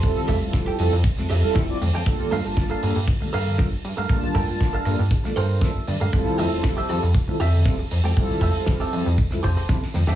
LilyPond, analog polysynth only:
\new Staff \with { instrumentName = "Analog polysynth" } { \time 4/4 \key f \major \tempo 4 = 118 <g c' e' f' a'>8. <g c' e' f' a'>8. <g c' e' f' a'>16 r8 <g c' e' f' a'>16 r16 <g c' e' f' a'>8 <g c' e' f' d''>16 r8 | <g bes d' f' a'>8. <g bes d' f' a''>8. <g bes d' f' a'>16 r8 <g bes d' f' a'>16 r8 <g bes d' f' a'>16 r8. | <g bes d' f' a''>8. <g bes d' f' a''>8. <g bes d' f' a'>16 r8 <g bes d' f' a'>16 r8 <g bes d' f' a'>16 r8. | <g c' e' f' a'>8. <g c' e' f' a'>8. <g c' e' f' a'>16 r8 <g c' e' f' a'>16 r8 <g c' e' f' a'>16 r8. |
<g c' e' f' a'>8. <g c' e' f' a'>8. <g c' e' f' a'>16 r8 <g c' e' f' a'>16 r8 <g c' e' f' a'>16 r8. | }